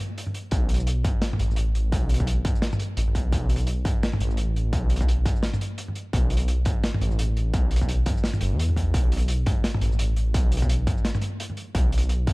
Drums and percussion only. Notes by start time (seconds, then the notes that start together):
0.18 closed hi-hat
0.26 mid tom
0.34 closed hi-hat
0.51 kick, closed hi-hat
0.69 closed hi-hat
0.74 closed hi-hat
0.80 shaker
0.87 closed hi-hat
1.04 kick, closed hi-hat, mid tom
1.22 snare, closed hi-hat
1.33 mid tom
1.39 closed hi-hat
1.51 shaker
1.56 closed hi-hat
1.75 closed hi-hat
1.92 kick, closed hi-hat
2.09 closed hi-hat
2.14 closed hi-hat
2.20 kick, shaker
2.27 closed hi-hat
2.45 kick, closed hi-hat, mid tom
2.55 shaker
2.62 snare, closed hi-hat
2.73 mid tom, shaker
2.79 closed hi-hat
2.97 closed hi-hat
3.08 mid tom
3.15 kick, closed hi-hat
3.33 kick, closed hi-hat
3.49 closed hi-hat
3.56 closed hi-hat, shaker
3.67 closed hi-hat
3.85 kick, closed hi-hat, mid tom
4.03 snare, closed hi-hat
4.13 mid tom
4.20 closed hi-hat
4.31 shaker
4.37 closed hi-hat
4.56 closed hi-hat
4.73 kick, closed hi-hat
4.90 closed hi-hat
4.96 closed hi-hat
5.01 kick, shaker
5.09 closed hi-hat
5.26 kick, closed hi-hat, mid tom
5.36 shaker
5.43 snare, closed hi-hat
5.54 mid tom, shaker
5.61 closed hi-hat
5.78 closed hi-hat
5.88 mid tom
5.95 closed hi-hat
6.13 kick, closed hi-hat
6.30 closed hi-hat
6.37 closed hi-hat
6.41 shaker
6.48 closed hi-hat
6.65 kick, closed hi-hat, mid tom
6.84 snare, closed hi-hat
6.94 mid tom
7.01 closed hi-hat
7.11 shaker
7.19 closed hi-hat
7.37 closed hi-hat
7.54 kick, closed hi-hat
7.71 closed hi-hat
7.76 closed hi-hat
7.82 kick, shaker
7.89 closed hi-hat
8.06 kick, closed hi-hat, mid tom
8.17 shaker
8.24 snare, closed hi-hat
8.33 mid tom, shaker
8.41 closed hi-hat
8.59 closed hi-hat
8.69 mid tom
8.77 kick, closed hi-hat
8.94 kick, closed hi-hat
9.12 closed hi-hat
9.17 closed hi-hat
9.22 shaker
9.28 closed hi-hat
9.46 kick, closed hi-hat, mid tom
9.64 snare, closed hi-hat
9.74 mid tom
9.81 closed hi-hat
9.92 shaker
9.99 closed hi-hat
10.16 closed hi-hat
10.34 kick, closed hi-hat
10.52 closed hi-hat
10.57 closed hi-hat
10.62 kick, shaker
10.69 closed hi-hat
10.87 kick, closed hi-hat, mid tom
10.97 shaker
11.05 snare, closed hi-hat
11.15 mid tom, shaker
11.21 closed hi-hat
11.40 closed hi-hat
11.50 mid tom
11.57 closed hi-hat
11.75 kick, closed hi-hat
11.92 closed hi-hat
11.98 closed hi-hat
12.02 shaker
12.09 closed hi-hat
12.27 kick, closed hi-hat, mid tom